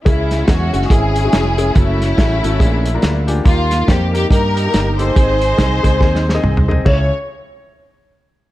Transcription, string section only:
0.05 0.86 G#3 medium
0.05 0.48 C#4 medium
0.05 0.45 E4 medium
0.48 0.89 C#4 medium
0.48 0.91 F#4 medium
0.89 1.71 C#4 medium
0.89 1.71 E4 medium
0.89 1.75 G#4 medium
1.75 3.25 A3 medium
1.75 3.25 C#4 medium
1.75 3.29 E4 medium
3.46 4.27 A#3 medium
3.46 3.86 F4 medium
3.88 4.13 G4 medium
4.14 4.30 G4 medium
4.31 4.98 D#4 medium
4.31 5.12 G4 medium
4.31 4.96 A#4 medium
4.99 6.65 D#4 medium
4.99 6.65 G#4 medium
4.99 6.66 C5 medium
6.87 7.10 C#5 medium

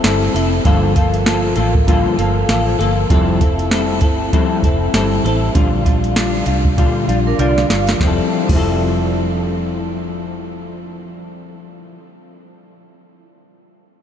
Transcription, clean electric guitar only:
0.04 0.34 G3 medium
0.04 0.35 C4 medium
0.04 0.34 E4 medium
0.04 0.33 A4 medium
0.34 0.65 C4 soft
0.34 0.65 E4 medium
0.34 0.65 A4 medium
0.64 0.95 G2 medium
0.64 0.96 D3 medium
0.64 0.96 F3 medium
0.64 0.95 A#3 medium
0.64 0.94 F4 medium
0.64 0.94 A4 medium
0.95 1.24 F3 soft
0.95 1.25 A#3 medium
0.95 1.26 F4 medium
0.95 1.26 A4 medium
1.25 1.57 F3 medium
1.25 1.57 A#3 medium
1.25 1.56 F4 medium
1.25 1.55 A4 medium
1.56 1.87 F3 soft
1.56 1.87 A#3 medium
1.56 1.87 F4 medium
1.56 1.87 A4 medium
1.87 2.18 G2 medium
1.87 2.18 D3 medium
1.87 2.18 F3 medium
1.87 2.18 A#3 medium
1.87 2.17 F4 medium
1.87 2.16 A4 medium
2.18 2.47 F3 soft
2.18 2.48 A#3 medium
2.18 2.49 F4 medium
2.18 2.48 A4 medium
2.48 2.79 F3 medium
2.48 2.79 A#3 medium
2.48 2.78 F4 medium
2.48 2.78 A4 medium
2.79 3.09 F3 soft
2.79 3.10 A#3 soft
2.79 3.10 F4 soft
2.79 3.10 A4 medium
3.10 3.41 F3 medium
3.10 3.41 G3 medium
3.10 3.41 C4 medium
3.10 3.40 E4 medium
3.10 3.39 A4 medium
3.40 3.70 C4 soft
3.40 3.71 E4 medium
3.40 3.71 A4 medium
3.71 4.02 G3 medium
3.71 4.02 C4 medium
3.71 4.01 E4 medium
3.71 4.01 A4 medium
4.02 4.32 C4 soft
4.02 4.32 E4 soft
4.02 4.32 A4 medium
4.33 4.63 F3 medium
4.33 4.63 G3 medium
4.33 4.63 C4 medium
4.33 4.63 E4 medium
4.33 4.62 A4 medium
4.63 4.93 C4 soft
4.63 4.94 E4 medium
4.63 4.94 A4 medium
4.94 5.24 G3 medium
4.94 5.25 C4 medium
4.94 5.24 E4 medium
4.94 5.23 A4 medium
5.24 5.55 C4 soft
5.24 5.55 E4 medium
5.24 5.55 A4 medium
5.54 5.85 A#2 medium
5.54 5.85 D3 medium
5.54 5.86 G3 medium
5.54 5.85 D4 medium
5.54 5.84 F4 medium
5.85 6.15 G3 soft
5.85 6.16 D4 soft
5.85 6.16 F4 medium
6.16 6.47 D3 medium
6.16 6.47 G3 medium
6.16 6.46 D4 medium
6.16 6.45 F4 medium
6.46 6.77 G3 soft
6.46 6.77 D4 medium
6.46 6.77 F4 medium
6.77 7.08 A#2 medium
6.77 7.08 D3 medium
6.77 7.08 G3 medium
6.77 7.08 D4 medium
6.77 7.06 F4 medium
7.07 7.38 G3 soft
7.07 7.39 D4 soft
7.07 7.38 F4 soft
7.38 7.69 D3 medium
7.38 7.69 G3 medium
7.38 7.69 D4 medium
7.38 7.68 F4 medium
7.69 7.99 G3 soft
7.69 8.00 D4 soft
7.69 8.00 F4 medium
7.98 8.46 F3 medium
7.98 8.49 G3 medium
8.03 8.52 C4 medium
8.03 8.50 E4 medium
8.07 8.52 A4 medium
8.47 11.97 F3 medium
8.47 11.99 G3 medium
8.52 12.02 C4 medium
8.52 12.04 E4 medium
8.56 12.06 A4 medium

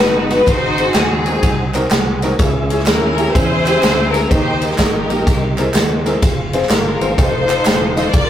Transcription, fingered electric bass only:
0.00 0.40 G1 medium
0.47 0.88 G#1 loud
0.95 1.36 D#2 medium
1.43 1.84 C2 loud
1.92 2.32 C2 medium
2.39 2.88 C#2 loud
2.88 3.28 D#2 medium
3.35 3.76 E2 medium
3.83 4.24 D2 loud
4.31 4.71 D#2 loud
4.79 5.05 G#1 medium
5.09 5.27 A#1 loud
5.27 5.67 C2 loud
5.74 6.15 D#2 medium
6.23 6.63 F1 loud
6.70 6.96 G1 medium
7.01 7.15 G#1 loud
7.18 7.59 F1 medium
7.65 8.06 E1 medium
8.14 8.30 F1 loud

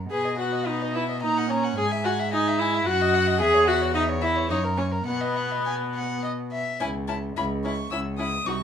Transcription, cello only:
0.11 1.24 B2 medium
1.23 1.77 A#2 medium
1.77 2.84 G#2 medium
2.86 3.42 F#2 medium
3.40 4.51 E2 medium
4.50 5.07 F#2 medium
5.07 6.57 B2 medium
6.81 7.30 C#2 medium
7.37 7.86 C#2 medium
7.92 8.40 C#2 medium
8.46 8.63 C2 medium

